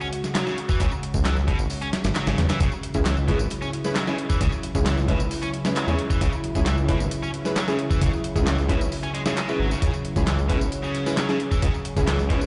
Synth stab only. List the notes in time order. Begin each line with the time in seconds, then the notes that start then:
2.94 G#3 C#4 E4 G#4
3.28 G#3 C#4 E4 B4
3.85 G#3 C#4 E4 B4
4.07 G#3 C#4 E4 G#4
4.75 G#3 C#4 E4 G#4
5.08 G#3 C#4 E4 B4
5.65 G#3 C#4 E4 B4
5.88 G#3 C#4 E4 G#4
6.55 G#3 C#4 E4 G#4
6.89 G#3 C#4 E4 B4
7.45 G#3 C#4 E4 B4
7.68 G#3 C#4 E4 G#4
8.35 G#3 C#4 E4 G#4
8.69 G#3 C#4 E4 B4
9.26 G#3 C#4 E4 G#4
9.48 G#3 C#4 E4 B4
10.16 G#3 C#4 E4 G#4
10.50 G#3 C#4 E4 B4
11.06 G#3 C#4 E4 B4
11.29 G#3 C#4 E4 G#4
11.97 G#3 C#4 E4 G#4
12.30 G#3 C#4 E4 B4